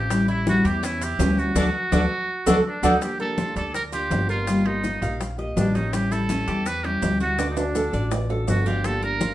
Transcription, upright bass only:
Already playing: A1
0.64 E2
1.19 D2
1.55 D2
1.92 D2
2.46 D2
2.83 D2
3.56 D2
4.10 G1
5.02 A#1
5.56 A1
6.47 E2
7.02 D2
7.93 A1
8.48 G1

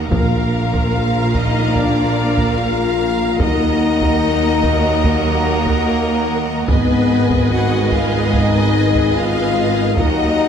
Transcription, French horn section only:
0.13 A#3
0.94 F4
1.34 D#4
1.76 D4
2.58 F4
3.42 D#4
5.04 A#3
6.69 B3
7.51 F#4
7.92 F4
8.33 D#4
9.15 F4
9.99 D#4

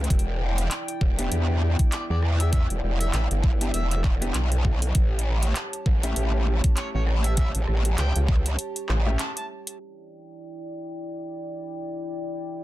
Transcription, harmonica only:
1.92 D5
2.10 D5
2.40 E5
2.53 E5
3.01 E5
3.14 E5
3.75 E5
3.91 E5
6.77 C#5
6.95 C#5
7.25 E5
7.38 E5
7.99 G5
9.20 A5
9.37 A5

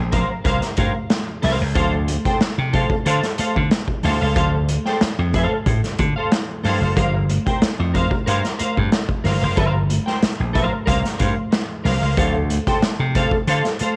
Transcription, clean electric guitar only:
0.12 A#4 C5 F5
0.29 muted clean electric guitar stroke
0.44 A#4 C5 F5
0.62 muted clean electric guitar stroke
0.77 A#4 C5 F5
0.94 muted clean electric guitar stroke
1.10 muted clean electric guitar stroke
1.27 muted clean electric guitar stroke
1.42 A#4 C5 F5
1.60 muted clean electric guitar stroke
1.75 A4 C5 F5
1.93 muted clean electric guitar stroke
2.08 muted clean electric guitar stroke
2.26 A4 C5 G5
2.41 muted clean electric guitar stroke
2.58 muted clean electric guitar stroke
2.73 A4 C5 F5
2.91 muted clean electric guitar stroke
3.05 A4 C5 F5
3.23 muted clean electric guitar stroke
3.38 A4 C5 F5
3.56 muted clean electric guitar stroke
3.71 muted clean electric guitar stroke
3.89 muted clean electric guitar stroke
4.03 A4 C5 F5
4.21 A4 C5 F5
4.36 A4 C5 F5
4.53 muted clean electric guitar stroke
4.69 muted clean electric guitar stroke
4.86 A4 C5 G5
5.02 muted clean electric guitar stroke
5.19 muted clean electric guitar stroke
5.34 A4 C5 F5
5.52 muted clean electric guitar stroke
5.67 muted clean electric guitar stroke
5.84 muted clean electric guitar stroke
6.16 A4 C5 F5
6.32 muted clean electric guitar stroke
6.49 muted clean electric guitar stroke
6.64 A4 C5 F5
6.81 A4 C5 F5
6.96 A#4 C5 F5
7.15 muted clean electric guitar stroke
7.29 muted clean electric guitar stroke
7.46 A#4 C5 G5
7.62 muted clean electric guitar stroke
7.79 muted clean electric guitar stroke
7.94 A#4 C5 F5
8.12 muted clean electric guitar stroke
8.26 A#4 C5 F5
8.43 muted clean electric guitar stroke
8.59 A#4 C5 F5
8.77 muted clean electric guitar stroke
8.92 muted clean electric guitar stroke
9.09 muted clean electric guitar stroke
9.24 A#4 C5 F5
9.41 A#4 C5 F5
9.56 A#4 C5 F5
9.74 muted clean electric guitar stroke
9.89 muted clean electric guitar stroke
10.06 A#4 C5 G5
10.22 muted clean electric guitar stroke
10.39 muted clean electric guitar stroke
10.53 A#4 C5 F5
10.71 muted clean electric guitar stroke
10.86 A#4 C5 F5
11.03 muted clean electric guitar stroke
11.18 A#4 C5 F5
11.35 muted clean electric guitar stroke
11.51 muted clean electric guitar stroke
11.69 muted clean electric guitar stroke
11.84 A#4 C5 F5
12.02 A#4 C5 F5
12.17 A4 C5 F5
12.34 muted clean electric guitar stroke
12.50 muted clean electric guitar stroke
12.67 A4 C5 G5
12.83 muted clean electric guitar stroke
13.00 muted clean electric guitar stroke
13.15 A4 C5 F5
13.33 muted clean electric guitar stroke
13.48 A4 C5 F5
13.65 muted clean electric guitar stroke
13.80 A4 C5 F5

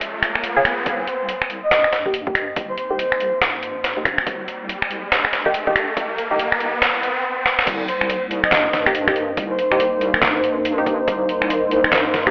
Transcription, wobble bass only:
0.86 C2
1.71 G2
2.56 C2
3.41 G2
4.27 C2
5.12 G2
5.97 C2
6.82 C2
7.67 C2
8.52 G2
9.37 C2
10.22 G2
11.08 C2
11.92 G2

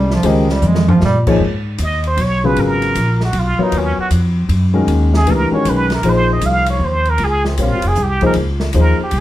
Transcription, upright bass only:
Already playing: C2
0.23 C#2
0.62 F2
1.02 A#2
1.40 G#2
1.79 D#2
2.17 B1
2.56 G#1
2.95 A#1
3.33 B1
3.58 muted upright bass stroke
3.72 D#2
3.97 muted upright bass stroke
4.11 F2
4.49 F#2
4.87 D#2
5.26 C#2
5.51 muted upright bass stroke
5.65 B1
6.02 A#1
6.41 C2
6.79 D#2
7.18 C#2
7.57 A#1
7.71 G#1
7.84 F1
7.97 C2
8.35 C#2
8.74 D#2
8.99 muted upright bass stroke
9.12 C2

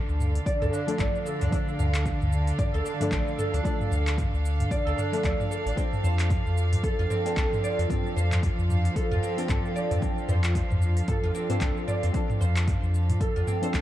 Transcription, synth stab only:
Already playing: F3 A3 D4 A4
0.87 F3 A3 D4 A4
0.98 F3 A3 D4 A4
1.50 F3 A3 D4
1.54 A4
3.00 F3 A3 D4 A4
3.11 F3 A3 D4 A4
3.63 F3 A3 D4
3.67 A4
5.12 F3 A3 D4 A4
5.23 F3 A3 D4 A4
5.75 F3 C4 D4 A4
7.25 F3 C4 D4 A4
7.36 F3 C4 D4 A4
7.88 F3 C4 D4
7.92 A4
9.37 F3 C4 D4 A4
9.48 F3 C4 D4 A4
10.00 F3 C4 D4
10.04 A4
11.49 F3 C4 D4 A4
11.60 F3 C4 D4 A4
12.13 F3 C4 D4 A4
13.62 F3 C4 D4 A4
13.73 F3 C4 D4 A4

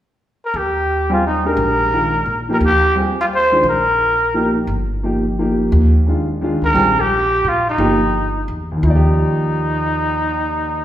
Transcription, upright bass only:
0.54 D#2
1.57 A#1
2.26 A#2
2.60 D#2
3.63 A#1
4.67 G1
5.72 D#2
6.62 D2
6.75 A#1
7.44 A#2
7.78 G1
8.48 E2
8.83 D#2

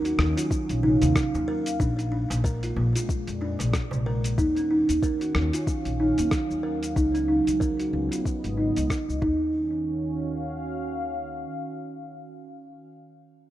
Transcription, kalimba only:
0.05 F#4
0.37 F4
0.83 D#4
1.48 A#4
1.80 D4
1.98 D4
2.12 D4
2.44 A#4
2.63 F4
2.95 F4
3.41 D4
4.06 A#4
4.38 D#4
4.57 C#4
4.71 D#4
5.03 A#4
5.21 F#4
5.54 F4
6.00 D#4
6.63 A#4
6.96 D#4
7.14 C#4
7.28 D#4
7.60 A#4
7.79 F#4
8.11 F4
8.57 D#4
9.21 D#4

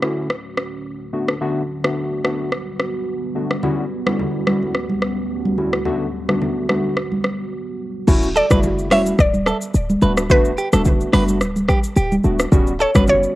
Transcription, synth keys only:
0.02 D3 A3 C#4 E4 F#4
1.13 D3 A3 B3 D4 F#4
1.41 D3 A3 B3 D4 F#4
1.84 D3 A3 B3 D4 F#4
2.24 D3 A3 B3 D4 F#4
3.35 D3 A3 B3 D4 F#4
3.63 D3 G3 B3 C#4 E4 F#4
4.06 D3 G3 B3 C#4 E4 F#4
4.46 D3 G3 B3 C#4 E4 F#4
5.58 D3 G3 B3 C#4 E4 F#4
5.85 D3 A3 B3 D4 F#4
6.28 D3 A3 B3 D4 F#4
6.69 D3 A3 B3 D4 F#4
8.08 A3 C#4 E4 F#4
8.51 C#3 A3 E4 F#4
8.91 A3 C#4 E4 F#4
10.02 A3 B3 D4 F#4
10.30 A3 B3 D4 F#4
10.73 A3 B3 D4 F#4
11.13 A3 B3 D4 F#4
12.24 A3 B3 D4 F#4
12.52 G3 B3 C#4 F#4
12.95 G3 B3 C#4 F#4

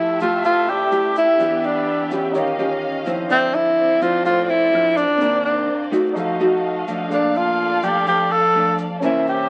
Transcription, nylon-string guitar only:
Already playing: F3
0.21 A3 E4 G4
0.44 C3
0.91 A3 E4 G4
1.39 E3 B3 D4 G4
2.11 C#4 F4 G4
2.35 D#3
2.59 C#4 F4 G4
3.06 F3 C4 E4
3.30 D3
4.01 F3 C4 E4
4.25 A2
4.72 F3 C4 E4
5.20 C3 D#3 A#3 D4
5.91 A3 D#4 F#4
6.15 F3
6.40 A3 D#4 F#4
6.87 F3 A3 D4
7.11 A#2
7.82 F3 A3 D4
8.06 F2
8.55 F3 A3 D4
9.02 C3 E3 A#3 C#4

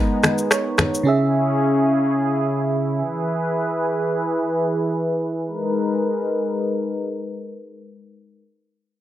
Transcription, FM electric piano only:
Already playing: G#3 D#4 A#4 B4
0.51 C#5
1.03 C#3 C#4 G#4
1.08 E5

